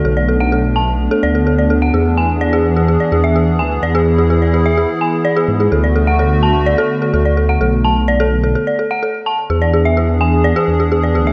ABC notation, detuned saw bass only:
X:1
M:4/4
L:1/8
Q:1/4=127
K:Emix
V:1 name="Detuned saw bass" clef=bass
B,,,4 z D,,3 | E,,4 z E,,2 D,, | E,,4 z3 G,, | D,,4 z2 D,,2 |
B,,,4 z4 | E,,4 z E,,2 D,, |]